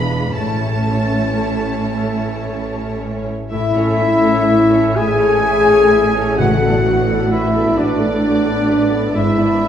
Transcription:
Already playing: double bass section E1, cello section E2, harp E3 B3 D4 F4 G#4, viola section G#3 D4, violin section F4 B4 B5
0.36 double bass section A1, harp A2, cello section A2, viola section A3 C#4, violin section E4 C#5 A5
0.91 harp C#4
1.45 harp A4
1.97 harp E5
2.49 harp C#5
3.02 harp A4
3.51 double bass section A1, cello section A2, harp A2, viola section A3 E4, clarinet E4, french horn section E4, oboe E5, violin section E5, flute E5
3.76 viola section C#4 A4, violin section C#5
4.00 viola section A3 E4, harp C#4, violin section E5
4.24 viola section C#4 A4, violin section C#5
4.48 viola section A3 E4, harp C#5, violin section E5
4.72 viola section C#4 A4, violin section C#5
4.96 viola section A3 E4, french horn section G#4, clarinet G#4, harp E5, violin section E5 G#5, oboe G#5, flute G#5
5.19 viola section C#4 A4, violin section C#5
5.42 viola section A3 E4, harp C#5, violin section E5
5.66 viola section C#4 A4, violin section C#5
5.90 viola section A3 E4, harp E4, violin section E5
6.14 viola section C#4 A4, violin section C#5
6.38 timpani A2, harp A2, viola section A3 F#4, french horn section F#4, clarinet F#4, violin section B4 F#5, oboe F#5, flute F#5
6.61 viola section B3 A4, violin section D5
6.85 viola section A3 F#4, harp D4, violin section B4
7.07 viola section B3 A4, violin section D5
7.30 viola section A3 F#4, french horn section E4, clarinet E4, violin section B4 E5, harp B4, oboe E5, flute E5
7.53 viola section B3 A4, violin section D5
7.76 viola section A3 F#4, clarinet D4, french horn section D4, violin section B4 D5, oboe D5, flute D5, harp F#5
7.99 viola section B3 A4, violin section D5
8.22 viola section A3 F#4, violin section B4, harp D5
8.45 viola section B3 A4, violin section D5
8.68 viola section A3 F#4, harp B4, violin section B4
8.90 viola section B3 A4, violin section D5
9.14 double bass section G#1, cello section G#2, harp G#2, viola section G#3 E4, french horn section E4, clarinet E4, oboe E5, flute E5, violin section E5
9.37 viola section B3 D4, violin section D5
9.61 viola section G#3 E4, harp D4, violin section E5

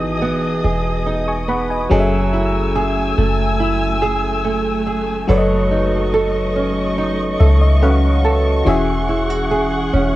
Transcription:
Already playing: fm electric piano E3 B3 F#4 G#4 D#5 E5 A5, nylon-string guitar E3 B3 D#4, string section G#4 D#5 D#6
0.01 808-style bass G#1
0.22 nylon-string guitar B3
0.32 808-style bass E1
0.64 808-style bass E1, nylon-string guitar G#4
1.06 nylon-string guitar D#4
1.28 fm electric piano G#5 C#6
1.48 nylon-string guitar B3, fm electric piano F#5 B5
1.70 fm electric piano D#5 G#5
1.90 808-style bass F#1, fm electric piano F#3 C#4 G#4 A4 D#5, nylon-string guitar F#3 G#4, string section A3 G#5 E6
2.00 fm electric piano E5
2.33 nylon-string guitar E4
2.75 nylon-string guitar G#4
3.18 808-style bass F#1, nylon-string guitar A3
3.60 nylon-string guitar E4
4.02 nylon-string guitar G#4
4.44 nylon-string guitar A3
4.87 nylon-string guitar G#4
5.27 808-style bass F#1, fm electric piano F#3 F#4 A4 B4 C#5 D5, nylon-string guitar F#3 A4, string section D#5 C#6
5.38 fm electric piano D#5
5.71 nylon-string guitar D#4
6.14 nylon-string guitar A4
6.56 nylon-string guitar C#4
6.98 nylon-string guitar D#4
7.40 808-style bass C#2, nylon-string guitar A4, fm electric piano E5
7.61 fm electric piano D#5
7.82 fm electric piano F#3 F#4 A4 B4 C#5 F5 F#5, nylon-string guitar C#4
7.90 fm electric piano F#5
8.24 nylon-string guitar A4, fm electric piano A5
8.65 808-style bass E1, fm electric piano E3 C#4 F#4 G#4 E5, nylon-string guitar E3 G#4, string section G#4 F#5
9.09 nylon-string guitar E4
9.30 nylon-string guitar F#4
9.51 nylon-string guitar G#4
9.93 808-style bass E1, nylon-string guitar C#4

